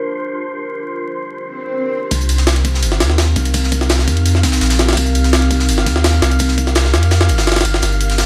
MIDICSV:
0, 0, Header, 1, 6, 480
1, 0, Start_track
1, 0, Key_signature, -3, "minor"
1, 0, Tempo, 357143
1, 921, Time_signature, 4, 2, 24, 8
1, 11100, End_track
2, 0, Start_track
2, 0, Title_t, "Synth texture"
2, 0, Program_c, 0, 99
2, 0, Note_on_c, 0, 72, 83
2, 0, Note_on_c, 0, 84, 84
2, 2840, Note_on_c, 0, 77, 86
2, 2841, Note_on_c, 0, 89, 85
2, 2848, Note_off_c, 0, 72, 0
2, 2849, Note_off_c, 0, 84, 0
2, 11100, Note_off_c, 0, 77, 0
2, 11100, Note_off_c, 0, 89, 0
2, 11100, End_track
3, 0, Start_track
3, 0, Title_t, "Ambient pad"
3, 0, Program_c, 1, 92
3, 0, Note_on_c, 1, 62, 76
3, 0, Note_on_c, 1, 65, 70
3, 0, Note_on_c, 1, 67, 72
3, 0, Note_on_c, 1, 70, 83
3, 2786, Note_off_c, 1, 62, 0
3, 2787, Note_off_c, 1, 65, 0
3, 2787, Note_off_c, 1, 67, 0
3, 2787, Note_off_c, 1, 70, 0
3, 2840, Note_on_c, 1, 60, 75
3, 2840, Note_on_c, 1, 67, 74
3, 2841, Note_on_c, 1, 63, 70
3, 2841, Note_on_c, 1, 70, 83
3, 10467, Note_off_c, 1, 60, 0
3, 10467, Note_off_c, 1, 63, 0
3, 10521, Note_on_c, 1, 62, 77
3, 10521, Note_on_c, 1, 65, 73
3, 11100, Note_off_c, 1, 62, 0
3, 11100, Note_off_c, 1, 65, 0
3, 11100, Note_off_c, 1, 67, 0
3, 11100, Note_off_c, 1, 70, 0
3, 11100, End_track
4, 0, Start_track
4, 0, Title_t, "Sub bass"
4, 0, Program_c, 2, 38
4, 2839, Note_on_c, 2, 36, 99
4, 3798, Note_on_c, 2, 31, 92
4, 3818, Note_off_c, 2, 36, 0
4, 4037, Note_on_c, 2, 39, 74
4, 4058, Note_off_c, 2, 31, 0
4, 4501, Note_off_c, 2, 39, 0
4, 4519, Note_on_c, 2, 36, 76
4, 5480, Note_on_c, 2, 41, 86
4, 5500, Note_off_c, 2, 36, 0
4, 5960, Note_on_c, 2, 36, 88
4, 5980, Note_off_c, 2, 41, 0
4, 6177, Note_off_c, 2, 36, 0
4, 6198, Note_on_c, 2, 34, 101
4, 6661, Note_off_c, 2, 34, 0
4, 6682, Note_on_c, 2, 36, 95
4, 7641, Note_on_c, 2, 31, 97
4, 7661, Note_off_c, 2, 36, 0
4, 7882, Note_on_c, 2, 39, 75
4, 7903, Note_off_c, 2, 31, 0
4, 8343, Note_off_c, 2, 39, 0
4, 8361, Note_on_c, 2, 36, 74
4, 9318, Note_on_c, 2, 41, 86
4, 9338, Note_off_c, 2, 36, 0
4, 9797, Note_on_c, 2, 31, 93
4, 9818, Note_off_c, 2, 41, 0
4, 10260, Note_off_c, 2, 31, 0
4, 10280, Note_on_c, 2, 31, 76
4, 10497, Note_off_c, 2, 31, 0
4, 10519, Note_on_c, 2, 31, 100
4, 11100, Note_off_c, 2, 31, 0
4, 11100, End_track
5, 0, Start_track
5, 0, Title_t, "Swell"
5, 0, Program_c, 3, 103
5, 1879, Note_on_c, 3, 60, 68
5, 2840, Note_off_c, 3, 60, 0
5, 11100, End_track
6, 0, Start_track
6, 0, Title_t, "Drums"
6, 2836, Note_on_c, 9, 42, 82
6, 2839, Note_on_c, 9, 36, 106
6, 2839, Note_on_c, 9, 51, 85
6, 2970, Note_off_c, 9, 42, 0
6, 2970, Note_on_c, 9, 42, 47
6, 2973, Note_off_c, 9, 36, 0
6, 2974, Note_off_c, 9, 51, 0
6, 3078, Note_on_c, 9, 51, 65
6, 3088, Note_off_c, 9, 42, 0
6, 3088, Note_on_c, 9, 42, 59
6, 3200, Note_on_c, 9, 38, 48
6, 3203, Note_off_c, 9, 51, 0
6, 3203, Note_on_c, 9, 51, 43
6, 3222, Note_off_c, 9, 42, 0
6, 3319, Note_off_c, 9, 38, 0
6, 3319, Note_off_c, 9, 51, 0
6, 3319, Note_on_c, 9, 38, 109
6, 3319, Note_on_c, 9, 51, 82
6, 3324, Note_off_c, 9, 38, 0
6, 3324, Note_on_c, 9, 38, 113
6, 3325, Note_on_c, 9, 42, 83
6, 3443, Note_off_c, 9, 51, 0
6, 3443, Note_on_c, 9, 51, 43
6, 3458, Note_off_c, 9, 38, 0
6, 3459, Note_off_c, 9, 42, 0
6, 3559, Note_off_c, 9, 51, 0
6, 3559, Note_on_c, 9, 36, 88
6, 3559, Note_on_c, 9, 42, 65
6, 3559, Note_on_c, 9, 51, 63
6, 3688, Note_on_c, 9, 38, 47
6, 3693, Note_off_c, 9, 36, 0
6, 3693, Note_off_c, 9, 42, 0
6, 3693, Note_off_c, 9, 51, 0
6, 3798, Note_on_c, 9, 51, 84
6, 3803, Note_on_c, 9, 42, 91
6, 3823, Note_off_c, 9, 38, 0
6, 3921, Note_on_c, 9, 38, 52
6, 3933, Note_off_c, 9, 51, 0
6, 3938, Note_off_c, 9, 42, 0
6, 4035, Note_off_c, 9, 38, 0
6, 4035, Note_on_c, 9, 38, 48
6, 4037, Note_off_c, 9, 38, 0
6, 4037, Note_on_c, 9, 38, 101
6, 4037, Note_on_c, 9, 51, 79
6, 4038, Note_on_c, 9, 42, 65
6, 4161, Note_off_c, 9, 38, 0
6, 4161, Note_on_c, 9, 38, 51
6, 4171, Note_off_c, 9, 51, 0
6, 4173, Note_off_c, 9, 42, 0
6, 4276, Note_off_c, 9, 38, 0
6, 4276, Note_on_c, 9, 38, 109
6, 4277, Note_off_c, 9, 38, 0
6, 4277, Note_on_c, 9, 38, 100
6, 4277, Note_on_c, 9, 51, 76
6, 4285, Note_on_c, 9, 42, 77
6, 4411, Note_off_c, 9, 38, 0
6, 4411, Note_off_c, 9, 51, 0
6, 4419, Note_off_c, 9, 42, 0
6, 4513, Note_on_c, 9, 42, 61
6, 4516, Note_on_c, 9, 51, 63
6, 4519, Note_on_c, 9, 36, 92
6, 4640, Note_off_c, 9, 42, 0
6, 4640, Note_on_c, 9, 42, 42
6, 4642, Note_off_c, 9, 51, 0
6, 4642, Note_on_c, 9, 51, 43
6, 4653, Note_off_c, 9, 36, 0
6, 4754, Note_off_c, 9, 42, 0
6, 4754, Note_on_c, 9, 42, 84
6, 4757, Note_off_c, 9, 51, 0
6, 4757, Note_on_c, 9, 51, 90
6, 4759, Note_on_c, 9, 36, 109
6, 4888, Note_off_c, 9, 42, 0
6, 4889, Note_on_c, 9, 38, 41
6, 4892, Note_off_c, 9, 51, 0
6, 4893, Note_off_c, 9, 36, 0
6, 4999, Note_on_c, 9, 36, 87
6, 4999, Note_on_c, 9, 51, 63
6, 5001, Note_on_c, 9, 42, 62
6, 5023, Note_off_c, 9, 38, 0
6, 5122, Note_on_c, 9, 38, 47
6, 5133, Note_off_c, 9, 51, 0
6, 5134, Note_off_c, 9, 36, 0
6, 5135, Note_off_c, 9, 42, 0
6, 5135, Note_on_c, 9, 42, 42
6, 5234, Note_off_c, 9, 42, 0
6, 5234, Note_on_c, 9, 42, 85
6, 5239, Note_off_c, 9, 38, 0
6, 5239, Note_on_c, 9, 38, 110
6, 5239, Note_on_c, 9, 51, 84
6, 5249, Note_off_c, 9, 38, 0
6, 5249, Note_on_c, 9, 38, 106
6, 5358, Note_off_c, 9, 38, 0
6, 5358, Note_on_c, 9, 38, 49
6, 5363, Note_off_c, 9, 38, 0
6, 5363, Note_on_c, 9, 38, 38
6, 5368, Note_off_c, 9, 42, 0
6, 5373, Note_off_c, 9, 51, 0
6, 5477, Note_on_c, 9, 42, 62
6, 5479, Note_on_c, 9, 36, 91
6, 5479, Note_on_c, 9, 51, 67
6, 5497, Note_off_c, 9, 38, 0
6, 5602, Note_off_c, 9, 51, 0
6, 5602, Note_on_c, 9, 51, 43
6, 5612, Note_off_c, 9, 42, 0
6, 5614, Note_off_c, 9, 36, 0
6, 5720, Note_off_c, 9, 51, 0
6, 5720, Note_on_c, 9, 51, 85
6, 5724, Note_on_c, 9, 42, 79
6, 5845, Note_on_c, 9, 38, 38
6, 5855, Note_off_c, 9, 51, 0
6, 5859, Note_off_c, 9, 42, 0
6, 5960, Note_off_c, 9, 38, 0
6, 5960, Note_on_c, 9, 36, 95
6, 5960, Note_on_c, 9, 38, 101
6, 5960, Note_on_c, 9, 51, 74
6, 5970, Note_on_c, 9, 42, 74
6, 6078, Note_off_c, 9, 38, 0
6, 6078, Note_on_c, 9, 38, 102
6, 6090, Note_off_c, 9, 42, 0
6, 6090, Note_on_c, 9, 42, 75
6, 6094, Note_off_c, 9, 51, 0
6, 6095, Note_off_c, 9, 36, 0
6, 6198, Note_off_c, 9, 38, 0
6, 6198, Note_off_c, 9, 42, 0
6, 6198, Note_on_c, 9, 38, 93
6, 6198, Note_on_c, 9, 42, 73
6, 6201, Note_on_c, 9, 51, 59
6, 6316, Note_off_c, 9, 38, 0
6, 6316, Note_on_c, 9, 38, 99
6, 6321, Note_off_c, 9, 42, 0
6, 6321, Note_on_c, 9, 42, 74
6, 6324, Note_off_c, 9, 51, 0
6, 6324, Note_on_c, 9, 51, 75
6, 6438, Note_off_c, 9, 42, 0
6, 6438, Note_on_c, 9, 42, 65
6, 6441, Note_off_c, 9, 38, 0
6, 6441, Note_off_c, 9, 51, 0
6, 6441, Note_on_c, 9, 38, 102
6, 6441, Note_on_c, 9, 51, 76
6, 6559, Note_off_c, 9, 38, 0
6, 6559, Note_on_c, 9, 38, 35
6, 6566, Note_off_c, 9, 38, 0
6, 6566, Note_off_c, 9, 51, 0
6, 6566, Note_on_c, 9, 38, 89
6, 6566, Note_on_c, 9, 51, 68
6, 6572, Note_off_c, 9, 42, 0
6, 6623, Note_off_c, 9, 38, 0
6, 6623, Note_off_c, 9, 51, 0
6, 6623, Note_on_c, 9, 38, 83
6, 6623, Note_on_c, 9, 51, 66
6, 6677, Note_on_c, 9, 42, 84
6, 6681, Note_on_c, 9, 36, 108
6, 6683, Note_off_c, 9, 51, 0
6, 6683, Note_on_c, 9, 51, 90
6, 6757, Note_off_c, 9, 38, 0
6, 6803, Note_off_c, 9, 42, 0
6, 6803, Note_on_c, 9, 42, 40
6, 6816, Note_off_c, 9, 36, 0
6, 6817, Note_off_c, 9, 51, 0
6, 6920, Note_off_c, 9, 42, 0
6, 6920, Note_on_c, 9, 42, 71
6, 6922, Note_on_c, 9, 51, 66
6, 7043, Note_on_c, 9, 38, 48
6, 7047, Note_off_c, 9, 51, 0
6, 7047, Note_on_c, 9, 51, 41
6, 7054, Note_off_c, 9, 42, 0
6, 7163, Note_off_c, 9, 38, 0
6, 7163, Note_off_c, 9, 51, 0
6, 7163, Note_on_c, 9, 38, 110
6, 7163, Note_on_c, 9, 51, 88
6, 7164, Note_off_c, 9, 38, 0
6, 7164, Note_on_c, 9, 38, 118
6, 7173, Note_on_c, 9, 42, 84
6, 7285, Note_off_c, 9, 51, 0
6, 7285, Note_on_c, 9, 51, 42
6, 7299, Note_off_c, 9, 38, 0
6, 7307, Note_off_c, 9, 42, 0
6, 7401, Note_off_c, 9, 51, 0
6, 7401, Note_on_c, 9, 36, 89
6, 7401, Note_on_c, 9, 51, 66
6, 7409, Note_on_c, 9, 42, 64
6, 7523, Note_on_c, 9, 38, 55
6, 7535, Note_off_c, 9, 36, 0
6, 7535, Note_off_c, 9, 51, 0
6, 7544, Note_off_c, 9, 42, 0
6, 7643, Note_on_c, 9, 51, 83
6, 7655, Note_on_c, 9, 42, 90
6, 7657, Note_off_c, 9, 38, 0
6, 7766, Note_on_c, 9, 38, 58
6, 7777, Note_off_c, 9, 51, 0
6, 7790, Note_off_c, 9, 42, 0
6, 7880, Note_on_c, 9, 42, 58
6, 7881, Note_off_c, 9, 38, 0
6, 7881, Note_on_c, 9, 36, 96
6, 7881, Note_on_c, 9, 38, 48
6, 7882, Note_on_c, 9, 51, 70
6, 8007, Note_off_c, 9, 38, 0
6, 8007, Note_on_c, 9, 38, 55
6, 8015, Note_off_c, 9, 42, 0
6, 8016, Note_off_c, 9, 36, 0
6, 8016, Note_off_c, 9, 51, 0
6, 8122, Note_off_c, 9, 38, 0
6, 8122, Note_on_c, 9, 38, 116
6, 8122, Note_on_c, 9, 51, 91
6, 8123, Note_on_c, 9, 42, 90
6, 8124, Note_off_c, 9, 38, 0
6, 8124, Note_on_c, 9, 38, 110
6, 8256, Note_off_c, 9, 51, 0
6, 8257, Note_off_c, 9, 42, 0
6, 8258, Note_off_c, 9, 38, 0
6, 8363, Note_on_c, 9, 38, 98
6, 8363, Note_on_c, 9, 51, 78
6, 8371, Note_on_c, 9, 42, 68
6, 8487, Note_off_c, 9, 42, 0
6, 8487, Note_off_c, 9, 51, 0
6, 8487, Note_on_c, 9, 42, 45
6, 8487, Note_on_c, 9, 51, 40
6, 8498, Note_off_c, 9, 38, 0
6, 8588, Note_off_c, 9, 42, 0
6, 8588, Note_on_c, 9, 42, 81
6, 8601, Note_off_c, 9, 51, 0
6, 8601, Note_on_c, 9, 36, 111
6, 8601, Note_on_c, 9, 51, 92
6, 8711, Note_on_c, 9, 38, 46
6, 8722, Note_off_c, 9, 42, 0
6, 8736, Note_off_c, 9, 36, 0
6, 8736, Note_off_c, 9, 51, 0
6, 8841, Note_on_c, 9, 36, 85
6, 8841, Note_on_c, 9, 51, 63
6, 8845, Note_off_c, 9, 38, 0
6, 8847, Note_on_c, 9, 42, 66
6, 8966, Note_on_c, 9, 38, 46
6, 8971, Note_off_c, 9, 42, 0
6, 8971, Note_on_c, 9, 42, 42
6, 8976, Note_off_c, 9, 36, 0
6, 8976, Note_off_c, 9, 51, 0
6, 9075, Note_off_c, 9, 42, 0
6, 9075, Note_on_c, 9, 42, 96
6, 9081, Note_off_c, 9, 38, 0
6, 9081, Note_on_c, 9, 38, 118
6, 9082, Note_off_c, 9, 38, 0
6, 9082, Note_on_c, 9, 38, 112
6, 9082, Note_on_c, 9, 51, 86
6, 9198, Note_off_c, 9, 38, 0
6, 9198, Note_on_c, 9, 38, 45
6, 9205, Note_off_c, 9, 38, 0
6, 9205, Note_on_c, 9, 38, 37
6, 9209, Note_off_c, 9, 42, 0
6, 9216, Note_off_c, 9, 51, 0
6, 9322, Note_off_c, 9, 38, 0
6, 9322, Note_on_c, 9, 38, 107
6, 9322, Note_on_c, 9, 42, 64
6, 9445, Note_on_c, 9, 51, 61
6, 9456, Note_off_c, 9, 38, 0
6, 9457, Note_off_c, 9, 42, 0
6, 9554, Note_on_c, 9, 42, 74
6, 9557, Note_on_c, 9, 38, 105
6, 9562, Note_off_c, 9, 38, 0
6, 9562, Note_on_c, 9, 38, 53
6, 9580, Note_off_c, 9, 51, 0
6, 9686, Note_off_c, 9, 38, 0
6, 9686, Note_on_c, 9, 38, 103
6, 9688, Note_off_c, 9, 42, 0
6, 9793, Note_on_c, 9, 42, 63
6, 9802, Note_on_c, 9, 51, 61
6, 9820, Note_off_c, 9, 38, 0
6, 9920, Note_on_c, 9, 38, 104
6, 9922, Note_off_c, 9, 42, 0
6, 9922, Note_on_c, 9, 42, 79
6, 9926, Note_off_c, 9, 38, 0
6, 9926, Note_on_c, 9, 38, 50
6, 9937, Note_off_c, 9, 51, 0
6, 10042, Note_off_c, 9, 38, 0
6, 10042, Note_on_c, 9, 38, 86
6, 10042, Note_on_c, 9, 51, 68
6, 10056, Note_off_c, 9, 42, 0
6, 10103, Note_off_c, 9, 38, 0
6, 10103, Note_off_c, 9, 51, 0
6, 10103, Note_on_c, 9, 38, 90
6, 10103, Note_on_c, 9, 51, 64
6, 10164, Note_off_c, 9, 38, 0
6, 10164, Note_off_c, 9, 51, 0
6, 10164, Note_on_c, 9, 38, 88
6, 10164, Note_on_c, 9, 42, 57
6, 10164, Note_on_c, 9, 51, 64
6, 10224, Note_off_c, 9, 38, 0
6, 10224, Note_off_c, 9, 51, 0
6, 10224, Note_on_c, 9, 38, 84
6, 10224, Note_on_c, 9, 51, 66
6, 10278, Note_off_c, 9, 42, 0
6, 10278, Note_on_c, 9, 42, 62
6, 10281, Note_off_c, 9, 51, 0
6, 10281, Note_on_c, 9, 51, 69
6, 10358, Note_off_c, 9, 38, 0
6, 10405, Note_on_c, 9, 38, 58
6, 10407, Note_off_c, 9, 38, 0
6, 10407, Note_on_c, 9, 38, 36
6, 10413, Note_off_c, 9, 42, 0
6, 10415, Note_off_c, 9, 51, 0
6, 10513, Note_on_c, 9, 42, 82
6, 10521, Note_off_c, 9, 38, 0
6, 10521, Note_on_c, 9, 38, 49
6, 10521, Note_on_c, 9, 51, 91
6, 10645, Note_off_c, 9, 42, 0
6, 10645, Note_on_c, 9, 42, 42
6, 10655, Note_off_c, 9, 38, 0
6, 10655, Note_off_c, 9, 51, 0
6, 10761, Note_on_c, 9, 51, 63
6, 10764, Note_off_c, 9, 42, 0
6, 10764, Note_on_c, 9, 42, 67
6, 10882, Note_off_c, 9, 51, 0
6, 10882, Note_on_c, 9, 51, 42
6, 10894, Note_on_c, 9, 38, 48
6, 10898, Note_off_c, 9, 42, 0
6, 10998, Note_off_c, 9, 38, 0
6, 10998, Note_off_c, 9, 51, 0
6, 10998, Note_on_c, 9, 38, 50
6, 10998, Note_on_c, 9, 51, 86
6, 10999, Note_on_c, 9, 42, 89
6, 11000, Note_off_c, 9, 38, 0
6, 11000, Note_on_c, 9, 38, 110
6, 11100, Note_off_c, 9, 38, 0
6, 11100, Note_off_c, 9, 42, 0
6, 11100, Note_off_c, 9, 51, 0
6, 11100, End_track
0, 0, End_of_file